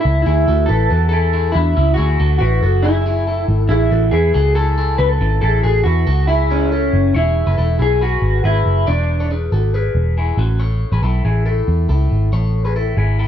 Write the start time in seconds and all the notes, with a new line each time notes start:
Already playing: E4 A4
0.01 E4
0.05 C#2
0.22 E4
0.26 D2 E4 G#4
0.48 D2 F#4 A4
0.66 A1 E4 A4 B4
0.90 E2 F#4 A4
1.09 E4 G#4 A4
1.33 E4 G#4
1.52 E2 D4 E4 F#4
1.77 C#2 C#4 E4
1.94 F#4 G#4
1.98 D2 E4
2.20 D2 F#4 A4
2.39 A1 E4 F#4 B4
2.62 F#1 F#4 A4
2.82 E4 G#4
3.06 E4 G#4
3.27 E4 A4
3.48 G#1
3.69 A1 E4 G#4
3.91 A1 F#4 A4
4.11 E2 E4 G#4 B4
4.34 C#2 F#4 G#4 A4
4.55 E4 G#4 A4
4.78 E4 G#4
4.98 C#2 C#4 F#4 B4
5.09 A4
5.21 G#1 C#4 E4
5.41 A1 E4 G#4 A4
5.63 A1 F#4 G#4 A4
5.84 E2 E4 F#4 B4
6.07 C#2 F#4 A4
6.27 E4 G#4
6.50 C#4 E4 G#4
6.72 E4 A4
6.93 F#1
7.15 E1 E4 G#4 C#5
7.47 F#1 G#4 B4
7.58 E1 E4 A4
7.79 B1 E4 G#4
8.01 F#4 G#4 B4
8.22 G#1
8.44 G#1 E4 G#4 B4
8.66 F#1
8.87 E1 D4 B4 D5
9.20 A4 C#5
9.31 G#4 B4
9.52 G#1 F#4 A4
9.74 G#4 B4
9.95 E1
10.18 E4 G#4
10.37 A1 C#4 F#4
10.60 A4 C#5
10.92 A1 G#4 B4
11.02 B1 E4 A4
11.25 A1 E4 G#4
11.46 E4 A4
11.68 E2
11.89 C#2 E4 A4
12.11 G#1
12.33 A1 A4 C#5
12.65 G#4 B4
12.76 E4 A4
12.97 G#1 E4 G#4
13.19 E4 A4